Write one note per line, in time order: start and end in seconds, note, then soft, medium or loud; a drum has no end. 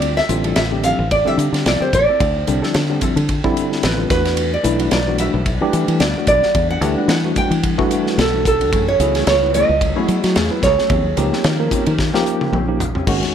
0.00 0.20 D2 loud
0.00 0.19 D3 medium
0.00 0.19 G3 medium
0.00 0.19 C4 medium
0.00 0.19 F4 medium
0.00 0.17 D5 loud
0.00 ride medium
0.17 0.55 E5 loud
0.17 muted clean electric guitar stroke soft
0.17 snare soft
0.29 0.52 A1 medium
0.29 0.62 D3 medium
0.29 0.62 G3 medium
0.29 0.63 C4 medium
0.29 0.63 F4 medium
0.29 muted clean electric guitar stroke soft
0.29 hi-hat pedal medium
0.29 ride medium
0.44 0.60 F3 medium
0.44 0.60 C4 medium
0.44 0.60 E4 medium
0.44 0.60 A4 medium
0.44 ride medium
0.56 0.92 A1 medium
0.56 0.82 E5 medium
0.56 snare loud
0.56 ride medium
0.71 1.04 D3 medium
0.71 1.04 G3 medium
0.71 1.04 C4 medium
0.71 1.04 G4 medium
0.71 muted clean electric guitar stroke soft
0.84 0.99 F3 medium
0.84 0.99 C4 medium
0.84 0.98 E4 medium
0.84 0.98 A4 medium
0.84 1.09 F5 medium
0.84 hi-hat pedal medium
0.84 ride medium
0.99 1.22 A1 medium
0.99 muted clean electric guitar stroke soft
1.11 1.18 C4 soft
1.11 1.19 F4 soft
1.11 1.27 D5 medium
1.11 muted clean electric guitar stroke soft
1.11 kick medium
1.11 ride medium
1.25 1.68 D3 medium
1.25 1.38 F3 medium
1.25 1.68 G3 medium
1.25 1.68 C4 medium
1.25 1.38 C4 medium
1.25 1.39 E4 medium
1.25 1.68 G4 loud
1.25 1.39 A4 medium
1.25 1.67 E5 medium
1.25 muted fingered electric bass stroke soft
1.38 1.51 D3 medium
1.38 muted clean electric guitar stroke soft
1.38 hi-hat pedal medium
1.38 ride medium
1.53 1.63 D3 medium
1.53 snare soft
1.53 ride medium
1.66 1.79 C2 medium
1.66 1.82 F3 medium
1.66 1.81 C4 medium
1.66 1.81 E4 medium
1.66 1.81 A4 medium
1.66 1.82 D5 medium
1.66 snare medium
1.66 ride medium
1.80 1.90 D3 medium
1.80 1.90 G3 medium
1.80 1.90 C4 medium
1.80 1.91 G4 medium
1.80 1.94 C5 medium
1.80 muted fingered electric bass stroke soft
1.80 muted clean electric guitar stroke soft
1.92 2.06 A1 medium
1.92 2.00 C4 soft
1.92 2.67 D5 medium
1.92 muted clean electric guitar stroke soft
1.92 kick medium
1.92 hi-hat pedal medium
1.92 ride medium
2.09 2.14 C4 soft
2.09 2.24 C4 soft
2.09 2.24 E4 soft
2.09 2.15 F4 soft
2.09 2.24 A4 medium
2.09 muted fingered electric bass stroke soft
2.20 2.43 D2 loud
2.20 kick loud
2.20 ride medium
2.36 muted clean electric guitar stroke soft
2.47 2.61 C2 loud
2.47 2.81 D3 medium
2.47 2.81 G3 medium
2.47 2.81 C4 medium
2.47 2.81 D4 medium
2.47 muted clean electric guitar stroke soft
2.47 hi-hat pedal medium
2.47 ride medium
2.62 2.78 F3 medium
2.62 2.78 C4 medium
2.62 2.78 E4 medium
2.62 2.78 A4 medium
2.62 snare soft
2.67 2.99 C5 medium
2.74 2.97 D3 medium
2.74 snare loud
2.74 ride medium
2.89 3.21 D3 medium
2.89 3.22 G3 medium
2.89 3.22 C4 medium
2.89 3.22 D4 medium
2.89 muted clean electric guitar stroke soft
3.01 3.17 F3 medium
3.01 3.17 C4 medium
3.01 3.17 E4 medium
3.01 3.16 A4 medium
3.01 kick medium
3.01 hi-hat pedal medium
3.01 ride medium
3.16 3.39 D3 medium
3.16 muted clean electric guitar stroke soft
3.16 ride medium
3.29 3.37 C4 soft
3.29 3.37 F4 soft
3.29 muted clean electric guitar stroke soft
3.29 kick medium
3.29 ride medium
3.44 3.86 D3 loud
3.44 3.55 F3 medium
3.44 3.86 G3 loud
3.44 3.86 C4 loud
3.44 3.56 C4 medium
3.44 3.86 E4 loud
3.44 3.55 E4 medium
3.44 3.56 A4 medium
3.44 kick medium
3.56 muted clean electric guitar stroke soft
3.56 hi-hat pedal medium
3.56 ride medium
3.72 snare soft
3.83 4.06 A1 medium
3.83 3.99 F3 medium
3.83 3.97 C4 medium
3.83 3.97 E4 medium
3.83 3.97 A4 medium
3.83 4.09 B4 medium
3.83 snare loud
3.83 ride medium
3.97 4.07 D3 medium
3.97 4.08 G3 medium
3.97 4.08 C4 medium
3.97 4.08 F4 medium
3.97 muted clean electric guitar stroke soft
4.10 4.56 E2 medium
4.10 4.55 E3 medium
4.10 4.55 A3 medium
4.10 4.56 D4 medium
4.10 4.56 F#4 medium
4.10 4.50 B4 medium
4.10 muted clean electric guitar stroke soft
4.10 kick loud
4.10 snare soft
4.10 hi-hat pedal medium
4.10 ride medium
4.25 4.41 B3 soft
4.25 4.41 D4 soft
4.25 4.40 F#4 medium
4.25 snare soft
4.25 ride medium
4.37 8.69 E3 medium
4.37 8.69 G3 medium
4.37 8.69 D4 medium
4.37 8.69 F#5 medium
4.37 ride medium
4.52 4.92 D5 medium
4.52 muted clean electric guitar stroke soft
4.63 4.88 B1 medium
4.63 4.97 E3 medium
4.63 4.98 A3 medium
4.63 4.98 D4 medium
4.63 4.98 E4 medium
4.63 muted clean electric guitar stroke soft
4.63 hi-hat pedal medium
4.63 ride medium
4.79 4.96 G3 medium
4.79 4.96 B3 medium
4.79 4.96 D4 medium
4.79 4.95 F#4 medium
4.79 ride medium
4.91 5.28 B1 medium
4.91 5.19 D5 medium
4.91 snare loud
4.91 ride medium
5.07 5.39 E3 medium
5.07 5.39 A3 medium
5.07 5.40 D4 medium
5.07 5.40 F#4 medium
5.07 muted clean electric guitar stroke soft
5.18 5.35 G3 medium
5.18 5.35 B3 medium
5.18 5.34 D4 medium
5.18 5.34 F#4 medium
5.18 5.45 E5 medium
5.18 hi-hat pedal medium
5.18 ride medium
5.34 5.57 B1 medium
5.34 muted clean electric guitar stroke soft
5.46 5.54 D4 soft
5.46 5.55 E4 soft
5.46 muted clean electric guitar stroke soft
5.46 kick medium
5.46 ride medium
5.61 6.04 E3 loud
5.61 5.73 G3 medium
5.61 6.04 A3 medium
5.61 5.73 B3 medium
5.61 6.04 D4 loud
5.61 5.73 D4 medium
5.61 5.73 F#4 medium
5.61 6.04 G4 loud
5.61 muted fingered electric bass stroke soft
5.73 5.86 E3 medium
5.73 muted clean electric guitar stroke soft
5.73 hi-hat pedal medium
5.73 ride medium
5.88 5.99 E3 medium
5.88 ride medium
6.00 6.13 D2 medium
6.00 6.16 G3 medium
6.00 6.16 B3 medium
6.00 6.16 D4 medium
6.00 6.15 F#4 medium
6.00 6.27 D5 medium
6.00 snare loud
6.00 ride medium
6.16 6.26 E3 medium
6.16 6.26 A3 medium
6.16 6.27 D4 medium
6.16 6.27 F#4 medium
6.16 muted fingered electric bass stroke soft
6.16 muted clean electric guitar stroke soft
6.27 6.40 B1 medium
6.27 6.36 D4 soft
6.27 6.70 D5 medium
6.27 muted clean electric guitar stroke soft
6.27 kick medium
6.27 hi-hat pedal medium
6.27 ride medium
6.43 6.59 B3 soft
6.43 6.50 D4 soft
6.43 6.59 D4 soft
6.43 6.59 F#4 medium
6.43 6.50 A4 soft
6.43 muted fingered electric bass stroke soft
6.43 snare soft
6.55 6.78 E2 medium
6.55 kick loud
6.55 ride medium
6.71 7.08 F#5 medium
6.71 muted clean electric guitar stroke soft
6.81 6.95 D2 loud
6.81 7.16 E3 medium
6.81 7.16 A3 medium
6.81 7.16 D4 medium
6.81 7.16 G4 medium
6.81 muted clean electric guitar stroke soft
6.81 hi-hat pedal medium
6.81 ride medium
6.98 7.13 G3 medium
6.98 7.13 B3 medium
6.98 7.13 D4 medium
6.98 7.13 F#4 medium
7.08 7.31 E3 medium
7.08 7.37 F#5 medium
7.08 snare loud
7.08 ride medium
7.24 7.56 E3 medium
7.24 7.57 A3 medium
7.24 7.57 D4 medium
7.24 7.57 F#4 medium
7.24 muted clean electric guitar stroke soft
7.36 7.52 G3 medium
7.36 7.51 B3 medium
7.36 7.51 D4 medium
7.36 7.51 F#4 medium
7.36 7.63 G5 medium
7.36 kick medium
7.36 hi-hat pedal medium
7.36 ride medium
7.51 7.74 E3 medium
7.51 muted clean electric guitar stroke soft
7.51 ride medium
7.63 7.71 D4 soft
7.63 7.72 G4 soft
7.63 muted clean electric guitar stroke soft
7.63 kick medium
7.63 ride medium
7.78 8.21 E3 loud
7.78 7.90 G3 medium
7.78 8.21 A3 loud
7.78 7.90 B3 medium
7.78 8.21 D4 loud
7.78 7.90 D4 medium
7.78 8.21 F#4 loud
7.78 7.90 F#4 medium
7.78 kick medium
7.91 muted clean electric guitar stroke soft
7.91 hi-hat pedal medium
7.91 ride medium
8.07 snare soft
8.17 8.72 B1 medium
8.17 8.33 G3 soft
8.17 8.33 B3 medium
8.17 8.32 D4 soft
8.17 8.32 F#4 medium
8.17 8.45 A4 medium
8.17 snare loud
8.17 ride medium
8.33 8.43 E3 medium
8.33 8.43 A3 medium
8.33 8.43 D4 medium
8.33 8.44 F#4 medium
8.33 muted clean electric guitar stroke soft
8.45 8.53 D4 soft
8.45 8.54 G4 soft
8.45 8.86 A4 loud
8.45 muted clean electric guitar stroke soft
8.45 kick medium
8.45 hi-hat pedal medium
8.45 ride medium
8.61 8.73 B3 soft
8.61 8.73 D4 medium
8.61 8.67 D4 soft
8.61 8.68 E4 soft
8.61 8.73 F#4 medium
8.61 ride medium
8.72 8.95 F#2 medium
8.72 8.88 E3 medium
8.72 10.89 F#3 medium
8.72 8.88 A3 medium
8.72 10.89 A3 medium
8.72 8.88 C#4 medium
8.72 10.89 E4 medium
8.72 10.89 G#4 medium
8.72 8.88 G#4 medium
8.72 kick loud
8.72 ride medium
8.88 9.25 C#5 medium
8.88 muted clean electric guitar stroke soft
9.00 9.22 C#2 medium
9.00 9.33 F#3 medium
9.00 9.33 B3 medium
9.00 9.33 E4 medium
9.00 9.33 G#4 medium
9.00 muted clean electric guitar stroke soft
9.00 hi-hat pedal medium
9.00 ride medium
9.15 9.31 E3 medium
9.15 9.31 A3 medium
9.15 9.31 C#4 medium
9.15 9.31 G#4 medium
9.15 snare soft
9.15 ride medium
9.27 9.62 C#2 medium
9.27 9.54 C#5 medium
9.27 snare loud
9.27 ride medium
9.42 9.74 F#3 medium
9.42 9.74 B3 medium
9.42 9.74 E4 medium
9.42 9.74 B4 medium
9.42 muted clean electric guitar stroke soft
9.54 9.70 E3 medium
9.54 9.69 A3 medium
9.54 9.69 C#4 medium
9.54 9.68 G#4 medium
9.54 10.33 D#5 loud
9.54 hi-hat pedal medium
9.54 ride medium
9.69 9.92 C#2 medium
9.69 muted clean electric guitar stroke soft
9.81 9.89 E4 soft
9.81 9.89 B4 soft
9.81 muted clean electric guitar stroke soft
9.81 kick medium
9.81 ride medium
9.96 10.08 E3 medium
9.96 10.38 F#3 medium
9.96 10.08 A3 medium
9.96 10.38 B3 medium
9.96 10.08 C#4 medium
9.96 10.39 E4 medium
9.96 10.39 F#4 loud
9.96 10.08 G#4 medium
9.96 muted fingered electric bass stroke soft
10.08 10.21 F#3 medium
10.08 muted clean electric guitar stroke soft
10.08 hi-hat pedal medium
10.08 ride medium
10.24 10.34 F#3 medium
10.24 snare soft
10.24 ride medium
10.33 10.49 E2 medium
10.33 10.51 E3 medium
10.33 10.51 A3 medium
10.33 10.63 C#5 loud
10.33 snare loud
10.33 ride medium
10.37 10.51 C#4 medium
10.37 10.51 G#4 medium
10.50 10.60 F#3 medium
10.50 10.60 B3 medium
10.50 10.60 E4 medium
10.50 10.61 B4 medium
10.50 muted fingered electric bass stroke soft
10.50 muted clean electric guitar stroke soft
10.63 10.76 C#2 medium
10.63 12.50 C#5 loud
10.63 muted clean electric guitar stroke soft
10.63 kick medium
10.63 snare soft
10.63 hi-hat pedal medium
10.63 ride medium
10.78 10.91 A3 soft
10.78 10.90 C#4 medium
10.78 10.84 E4 soft
10.78 10.90 G#4 medium
10.78 10.84 A4 soft
10.78 snare soft
10.89 11.13 D#2 medium
10.89 11.06 F3 medium
10.89 11.05 C4 medium
10.89 13.05 C#4 medium
10.89 11.04 C#4 medium
10.89 13.06 D#4 medium
10.89 13.06 G4 medium
10.89 11.04 G4 medium
10.89 kick loud
10.89 ride medium
11.05 muted clean electric guitar stroke soft
11.17 11.30 C#2 loud
11.17 11.50 F3 medium
11.17 11.50 A#3 medium
11.17 11.51 D#4 medium
11.17 11.51 G4 loud
11.17 muted clean electric guitar stroke soft
11.17 hi-hat pedal medium
11.17 ride medium
11.33 11.48 F3 medium
11.33 11.48 C4 medium
11.33 11.48 C#4 medium
11.33 11.48 G4 medium
11.33 snare soft
11.44 11.67 D#3 medium
11.44 snare loud
11.44 ride medium
11.59 11.92 F3 medium
11.59 11.92 A#3 medium
11.59 11.92 D#4 medium
11.59 11.92 A#4 medium
11.59 muted clean electric guitar stroke soft
11.71 11.87 F3 medium
11.71 11.86 C4 medium
11.71 11.85 C#4 medium
11.71 11.85 G4 medium
11.71 kick medium
11.71 hi-hat pedal medium
11.71 ride medium
11.86 12.10 D#3 medium
11.86 muted clean electric guitar stroke soft
11.86 ride medium
11.98 12.06 D#4 soft
11.98 12.06 G4 soft
11.98 muted clean electric guitar stroke soft
11.98 kick medium
11.98 snare medium
12.14 12.24 F3 medium
12.14 12.56 F3 loud
12.14 12.57 A#3 loud
12.14 12.24 C4 medium
12.14 12.25 C#4 medium
12.14 12.57 D#4 loud
12.14 12.25 G4 medium
12.14 12.57 G4 loud
12.14 snare medium
12.25 muted clean electric guitar stroke soft
12.25 hi-hat pedal medium
12.41 high tom medium
12.52 12.98 A#1 medium
12.52 12.68 F3 medium
12.52 12.67 C4 medium
12.52 12.67 C#4 medium
12.52 12.67 G4 medium
12.52 mid tom medium
12.68 12.78 F3 medium
12.68 12.78 A#3 medium
12.68 12.78 D#4 medium
12.68 12.78 G4 medium
12.68 muted clean electric guitar stroke soft
12.80 12.88 D#4 soft
12.80 12.89 F4 soft
12.80 muted clean electric guitar stroke soft
12.80 floor tom medium
12.80 hi-hat pedal medium
12.95 13.07 C4 soft
12.95 13.06 C#4 medium
12.95 13.02 D#4 soft
12.95 13.02 F4 soft
12.95 13.07 G4 medium
12.95 floor tom medium
13.07 13.20 G#1 medium
13.07 13.23 D#3 medium
13.07 13.35 D#3 medium
13.07 13.35 G#3 medium
13.07 13.22 A#3 medium
13.07 13.21 C#4 medium
13.07 13.35 C#4 medium
13.07 13.21 F#4 medium
13.07 13.35 F#4 loud
13.07 kick loud
13.07 crash medium
13.22 muted clean electric guitar stroke soft
13.22 snare soft
13.22 ride medium